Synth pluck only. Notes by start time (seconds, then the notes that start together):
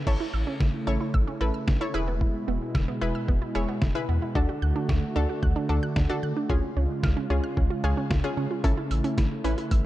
0.07 E4 A4 C#5
0.87 E4 A4 C#5
1.41 E4 A4 B4
1.81 E4 A4 C#5
1.94 E4 G#4 B4
3.01 E4 G#4 B4
3.55 E4 G#4 C#5
3.95 E4 G#4 B4
4.35 D4 F#4 A4
5.16 D4 F#4 A4
5.69 D4 F#4 A4
6.10 D4 F#4 A4
6.50 C#4 F4 G#4
7.30 C#4 F4 G#4
7.84 C#4 F4 G#4
8.24 C#4 F4 G#4
8.64 C#4 E4 A4
9.44 C#4 E4 B4